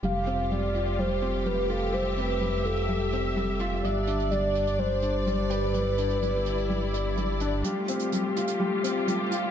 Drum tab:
HH |x-xxx-xx--x-x-x-|x-xxx-xx--x-x-x-|x-xxx-xx--x-x-x-|x-xxx-xx--x-x-x-|

HH |x-xxx-xx--x-x-x-|